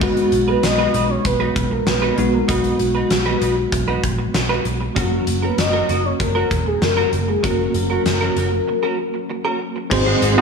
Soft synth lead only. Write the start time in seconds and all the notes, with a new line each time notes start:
0.03 F#4
0.49 B4
0.64 D#5
1.10 C#5
1.26 B4
1.72 A#4
1.87 B4
2.34 A#4
2.50 F#4
4.97 F#4
5.44 B4
5.59 D#5
6.05 C#5
6.21 A#4
6.67 G#4
6.83 A#4
7.29 G#4
7.44 A#4